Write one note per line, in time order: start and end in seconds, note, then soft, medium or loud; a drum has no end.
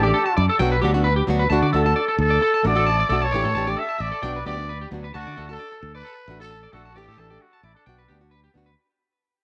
0.00 0.11 A1 loud
0.00 0.45 G4 medium
0.00 0.16 G4 medium
0.00 0.10 D5 medium
0.05 0.18 A3 soft
0.05 0.17 D4 soft
0.14 0.22 A4 medium
0.26 0.33 A5 medium
0.37 0.48 F#2 loud
0.37 0.45 D5 medium
0.49 0.56 A4 medium
0.59 0.79 B1 loud
0.59 0.74 F#3 loud
0.59 0.75 B3 medium
0.59 0.75 D4 loud
0.59 0.75 F#4 loud
0.59 0.68 G5 loud
0.72 0.79 B4 medium
0.81 1.21 D2 loud
0.81 0.94 F#3 medium
0.81 0.95 B3 medium
0.81 0.95 D4 medium
0.81 0.93 F#4 medium
0.81 0.90 G4 medium
0.94 1.09 B3 medium
0.94 1.08 D4 medium
0.94 1.07 F#4 medium
1.04 1.12 B4 medium
1.16 1.23 G4 medium
1.27 1.47 D2 loud
1.27 1.42 F#3 medium
1.27 1.43 B3 medium
1.27 1.43 D4 medium
1.27 1.43 F#4 medium
1.39 1.46 B4 medium
1.50 1.61 D2 medium
1.50 1.65 A3 medium
1.50 1.66 D4 medium
1.50 1.72 F#4 medium
1.50 1.66 F#4 medium
1.50 1.58 A5 loud
1.62 1.71 D3 medium
1.62 1.69 D5 medium
1.73 1.93 D2 loud
1.73 1.85 A3 medium
1.73 1.86 D4 medium
1.73 1.84 F#4 medium
1.73 1.81 A4 medium
1.73 2.16 A4 medium
1.85 2.00 D4 soft
1.85 1.98 F#4 medium
1.85 1.93 A5 medium
1.96 2.04 D5 medium
2.08 2.15 A4 medium
2.19 2.38 D2 medium
2.19 2.67 A4 loud
2.30 2.37 D5 medium
2.42 2.50 A4 medium
2.54 2.61 A5 medium
2.63 3.02 A1 medium
2.63 2.76 A3 medium
2.63 2.77 D4 medium
2.63 2.74 F#4 medium
2.63 3.25 D5 loud
2.75 2.90 D4 soft
2.75 2.89 F#4 medium
2.75 2.83 A4 medium
2.87 2.95 A5 loud
3.00 3.06 D5 medium
3.09 3.33 B1 loud
3.09 3.24 A3 medium
3.09 3.25 D4 medium
3.09 3.25 F#4 medium
3.09 3.17 A4 medium
3.22 3.71 C#5 loud
3.22 3.29 A5 medium
3.32 3.43 A1 loud
3.32 3.47 E3 medium
3.32 3.48 A3 medium
3.32 3.48 D4 medium
3.32 3.48 G4 medium
3.32 3.40 D5 medium
3.45 3.53 A2 medium
3.45 3.51 A4 medium
3.55 3.74 A1 loud
3.55 3.67 E3 medium
3.55 3.68 D4 medium
3.55 3.66 G4 medium
3.55 3.63 A5 medium
3.67 3.82 A3 soft
3.67 3.81 D4 soft
3.67 3.80 G4 medium
3.67 3.74 D5 medium
3.67 3.80 D5 loud
3.77 3.85 A4 medium
3.77 4.03 E5 loud
3.89 3.96 A5 medium
3.99 4.11 A1 loud
3.99 4.45 D5 loud
3.99 4.07 E5 medium
4.12 4.19 A4 medium
4.22 4.42 B1 loud
4.22 4.37 F#3 medium
4.22 4.37 B3 medium
4.22 4.38 D4 medium
4.22 4.38 F#4 medium
4.22 4.31 G5 loud
4.36 4.43 B4 medium
4.45 4.84 D2 loud
4.45 4.58 F#3 medium
4.45 4.58 B3 medium
4.45 4.58 D4 medium
4.45 4.56 F#4 medium
4.45 4.54 G4 medium
4.45 4.88 D5 loud
4.57 4.72 B3 soft
4.57 4.71 D4 medium
4.57 4.70 F#4 medium
4.69 4.77 B4 medium
4.81 4.88 G4 medium
4.91 5.10 D2 loud
4.91 5.05 F#3 medium
4.91 5.06 B3 medium
4.91 5.06 D4 medium
4.91 5.07 F#4 medium
5.04 5.11 B4 medium
5.14 5.25 D2 loud
5.14 5.28 A3 medium
5.14 5.29 D4 medium
5.14 5.47 F#4 loud
5.14 5.29 F#4 medium
5.14 5.22 A5 loud
5.27 5.35 D3 medium
5.27 5.33 D5 medium
5.37 5.56 D2 loud
5.37 5.49 A3 medium
5.37 5.50 D4 medium
5.37 5.48 F#4 medium
5.37 5.45 A4 medium
5.49 5.64 D4 soft
5.49 5.62 F#4 medium
5.49 5.92 A4 loud
5.49 5.56 A5 medium
5.59 5.67 D5 medium
5.72 5.79 A4 medium
5.83 6.01 D2 loud
5.95 6.37 B4 loud
5.95 6.01 D5 medium
6.04 6.13 A4 medium
6.28 6.66 A1 loud
6.28 6.40 A3 medium
6.28 6.40 D4 medium
6.28 6.39 F#4 medium
6.40 6.55 D4 soft
6.40 6.53 F#4 medium
6.40 6.47 A4 medium
6.40 6.74 A4 loud
6.51 6.59 A5 medium
6.63 6.70 D5 medium
6.73 6.95 A#1 loud
6.73 6.87 A3 medium
6.73 6.88 D4 medium
6.73 6.98 F#4 loud
6.73 6.89 F#4 medium
6.73 6.81 A4 medium
6.85 6.92 A5 medium
6.95 7.06 A1 loud
6.95 7.10 E3 medium
6.95 7.10 A3 medium
6.95 7.11 D4 medium
6.95 7.21 G4 loud
6.95 7.11 G4 medium
6.95 7.04 D5 medium
7.08 7.17 A2 medium
7.08 7.15 A4 medium
7.17 7.37 A1 loud
7.17 7.30 E3 medium
7.17 7.31 A3 medium
7.17 7.31 D4 medium
7.17 7.29 G4 medium
7.17 7.43 A4 loud
7.17 7.26 A5 medium
7.30 7.45 A3 soft
7.30 7.44 D4 soft
7.30 7.43 G4 medium
7.30 7.37 D5 medium
7.41 7.63 F#4 loud
7.53 7.60 A5 medium
7.63 7.74 A1 loud
7.63 7.73 E4 medium
7.63 7.72 D5 medium
7.74 8.50 D4 medium
7.74 7.83 A4 medium
7.86 8.06 B1 loud
7.86 8.01 B3 medium
7.86 8.02 F#4 medium
7.86 7.94 G5 loud
7.86 muted nylon-string guitar stroke medium
7.99 8.05 B4 medium
8.08 8.48 D2 loud
8.08 8.21 B3 medium
8.08 8.22 D4 medium
8.08 8.20 F#4 medium
8.08 8.17 G4 medium
8.21 8.36 D4 soft
8.21 8.34 F#4 medium
8.31 8.39 B4 loud
8.44 8.51 G4 medium
8.54 8.74 D2 medium
8.54 8.69 B3 medium
8.54 8.70 D4 medium
8.54 8.70 F#4 medium
8.66 8.73 B4 medium